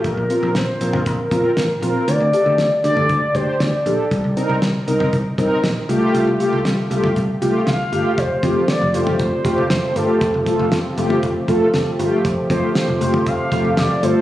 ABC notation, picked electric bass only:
X:1
M:4/4
L:1/16
Q:1/4=118
K:Fmix
V:1 name="Picked electric bass" clef=bass
B,,, B,,, z B,,, B,,, z B,,, B,,, B,,, z B,,, z A,,, z B,,, z | D,, D,, z D,, D,, z D,, D,, D,, z D,, z D,, z B,,, z | C,, C,, z C,, C,, z C,, C,, C,, z C,, z B,,, z C,, z | C,, C,, z C,, C,, z C,, C,, C,, z C,, z C,, z G,,, z |
F,,, z F,, z2 F,,, F,,, z F,,, z F,,, F,,, F,,, z G,,, z | F,,, F,,, z F,,, F,,, z F,,, z F,,, z F,,, z F,,, z G,,, z | F,,, z F,, z2 F,,, F,,, z F,,, z F,,, F,,, F,,, z G,,, z |]